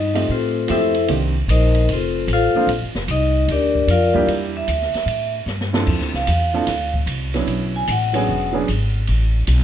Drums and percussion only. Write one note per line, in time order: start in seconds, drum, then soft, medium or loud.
0.15 ride medium
0.68 hi-hat pedal medium
0.68 ride medium
0.95 ride soft
1.08 ride medium
1.49 hi-hat pedal medium
1.49 ride medium
1.75 ride soft
1.89 ride medium
2.28 hi-hat pedal soft
2.28 ride medium
2.69 ride medium
2.95 snare medium
3.08 hi-hat pedal medium
3.08 ride medium
3.48 ride medium
3.75 kick medium
3.88 hi-hat pedal medium
3.88 ride medium
4.15 kick soft
4.28 ride medium
4.68 hi-hat pedal medium
4.68 ride medium
4.82 snare soft
4.94 snare soft
4.94 ride soft
5.08 ride medium
5.47 snare soft
5.47 hi-hat pedal medium
5.61 snare medium
5.74 snare medium
5.87 kick medium
5.87 crash medium
6.01 snare soft
6.14 snare soft
6.27 hi-hat pedal medium
6.27 ride medium
6.67 snare soft
6.67 ride medium
6.94 kick medium
7.07 hi-hat pedal soft
7.07 ride medium
7.34 snare soft
7.34 ride soft
7.48 ride medium
7.87 hi-hat pedal medium
7.87 ride medium
8.14 ride medium
8.68 hi-hat pedal medium
8.68 ride medium
9.07 ride medium
9.47 hi-hat pedal medium
9.47 ride medium